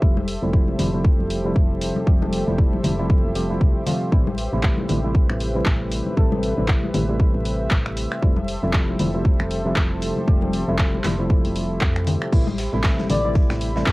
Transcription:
Already playing: G4 C5 E5
0.01 F1 C3 F3 G3 A3 E4 A4, kick
0.17 high conga
0.28 open hi-hat
0.42 F1 C3 F3 G3 A3 E4
0.53 C3 F3 G3 A3 E4, kick
0.68 high conga
0.78 F1 C3 F3 G3 A3 E4, open hi-hat, low conga
0.93 C3 F3 G3 A3 E4
1.04 kick
1.19 F1
1.30 open hi-hat
1.44 C3 F3 G3 A3 E4
1.56 F1, kick
1.81 open hi-hat
1.96 high conga
2.06 F1 C3 F3 G3 A3 G4 E5, kick
2.22 high conga
2.33 open hi-hat
2.47 F1 C3 F3 G3 A3 E4
2.58 C3 F3 G3 A3 E4, kick
2.73 high conga
2.83 F1 C3 F3 G3 A3 E4, open hi-hat, low conga
2.98 C3 F3 G3 A3 E4
3.09 C3 F3 G3 E4, kick
3.24 F1
3.35 C3 F3 G3 A3 G4, open hi-hat
3.50 C3 F3 G3 A3 E4
3.61 C2, kick
3.86 C3 F3 G3 A3 F4, open hi-hat, low conga
4.12 A1 C3 E3 G3 A3 E4 B4 E5, kick
4.27 high conga
4.38 open hi-hat
4.52 A1 C3 E3 G3 A3 E4
4.63 C3 E3 G3 A3 E4, kick, clap
4.78 high conga
4.89 A1 C3 E3 G3 A3 E4, open hi-hat, low conga
5.03 C3 E3 G3 A3 E4
5.15 kick
5.30 A1, finger snap
5.40 open hi-hat
5.54 C3 E3 G3 A3 E4
5.66 A1, kick, clap
5.92 open hi-hat
6.07 high conga
6.17 A1 C3 E3 G3 A3 A4, kick
6.32 high conga
6.43 open hi-hat
6.57 A1 C3 E3 G3 A3 E4
6.68 C3 G3 A3, kick, clap
6.84 high conga
6.94 A1 C3 E3 G3 A3 E4, open hi-hat, low conga
7.09 C3 E3 G3 A3 E4
7.19 C3 E3 G3 A3 E4, kick
7.35 A1
7.46 open hi-hat
7.71 A1, kick, clap
7.86 finger snap
7.97 open hi-hat
8.12 finger snap
8.22 F1 C3 F3 G3 A3 E4 G4 A4 C5, kick
8.36 high conga
8.48 open hi-hat
8.62 F1 C3 F3 G3 A3 E4
8.73 F3 G3 A3, kick, clap
8.88 high conga
8.99 F1 C3 F3 G3 A3 E4, open hi-hat, low conga
9.14 C3 F3 G3 A3 E4
9.25 kick
9.40 F1, finger snap
9.51 open hi-hat
9.64 C3 F3 G3 A3 E4
9.76 F1, kick, clap
10.02 open hi-hat
10.17 high conga
10.27 F1 C3 F3 G3 A3 G4, kick
10.42 high conga
10.53 open hi-hat
10.68 F1 C3 F3 G3 A3 E4
10.79 F3 G3 E4, kick, clap
10.95 high conga
11.04 F1 C3 F3 G3 A3 E4, clap, open hi-hat, low conga
11.19 C3 F3 G3 A3 E4
11.29 C3 F3 G3 A3 E4, kick
11.45 F1, open hi-hat
11.56 open hi-hat
11.81 F2, kick, clap
11.96 finger snap
12.07 open hi-hat, low conga
12.22 finger snap
12.32 A1 C3 E3 G3 A3 E4 C5 E5 B5, kick, closed hi-hat, crash
12.47 closed hi-hat, high conga
12.58 snare, closed hi-hat, open hi-hat
12.73 A1 C3 E3 G3 A3 E4
12.84 C3 E3 G3 A3 E4, kick, snare, clap, closed hi-hat
12.98 snare, high conga
13.09 A1 C3 E3 G3 A3 E4 D5, closed hi-hat, open hi-hat, low conga
13.24 C3 E3 G3 A3 E4
13.35 kick, closed hi-hat
13.50 A1, finger snap, snare
13.61 closed hi-hat, open hi-hat
13.75 C3 E3 G3 A3 E4, snare
13.86 A1, kick, snare, clap, closed hi-hat

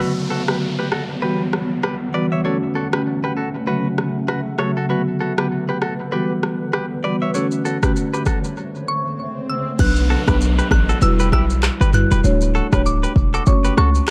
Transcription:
0.00 D3 F#3 B3 F#4 B4 F#5, downlifter
0.30 F#4 A4
0.48 D3 F#3 B3 F#4 G4 B4, cross-stick
0.79 G4 B4
0.92 F#4 A4, cross-stick
1.22 E3 G3 B3 F#4 G4 B4
1.53 cross-stick
1.83 G4 B4, cross-stick
2.13 E3 G3 B3 F#4 B4 D5
2.32 C#5 E5
2.44 D3 A3 C#4 F#4 A4 C#5
2.75 F#4 A4
2.92 D3 A3 C#4 F#4 G4 B4, cross-stick
3.24 G4 B4
3.37 F#4 A4
3.66 C#3 F#3 A3 F#4 A4 B4
3.98 cross-stick
4.28 F#4 B4, cross-stick
4.58 C#3 F#3 A3 F#4 A4 C#5, cross-stick
4.77 F#4 A4
4.89 D3 F#3 B3 F#4 B4, swell
5.20 F#4 A4
5.37 D3 F#3 B3 F#4 G4 B4, cross-stick
5.69 G4 B4
5.82 F#4 A4, cross-stick
6.12 E3 G3 B3 F#4 G4 B4
6.43 cross-stick
6.73 G4 B4, cross-stick
7.03 E3 G3 B3 F#4 B4 D5
7.22 C#5 E5
7.34 D3 A3 C#4 F#4 A4 C#5, shaker
7.51 shaker
7.65 F#4 A4, shaker
7.82 D3 A3 C#4 F#4 G4 B4, kick, cross-stick, shaker
7.96 shaker
8.14 G4 B4, shaker
8.26 F#4 A4, kick, cross-stick, shaker
8.44 shaker
8.57 C#3 A3
8.88 C#6
9.49 E6
9.79 B1 F#3 B3 D4 B4 F#6, kick, crash, downlifter, shaker
9.96 shaker
10.10 F#4 A4
10.27 B1 F#3 B3 D4 G4 B4, kick, cross-stick, shaker
10.41 shaker
10.59 G4 B4, shaker
10.71 A1 F#6, kick, cross-stick
10.89 F#4 A4, shaker
11.01 E1 G3 E4 F#4 B4 E6, shaker
11.20 G4 B4, shaker
11.32 B1 E4 G4 E6, kick, cross-stick
11.50 shaker
11.63 cross-stick, clap, shaker
11.81 G1 G4 B4, shaker
11.93 G3 E4 F#4 B4 F#6, mid tom, shaker
12.11 E1 G4 B4, shaker
12.24 D1 A3 D4 F#4 C#5, shaker
12.41 shaker
12.55 F#4 A4
12.72 D1 A3 D4 F#4 G4 B4 C#5, kick, cross-stick, shaker
12.86 D6, shaker
13.03 G4 B4, shaker
13.16 E1, kick
13.34 F#4 A4 D6, shaker
13.46 F#1 A3 C#4 F#4 C#5 C#6, kick, shaker
13.64 G4 B4, shaker
13.77 C#2 F#4 A4 C#6, cross-stick
13.95 shaker

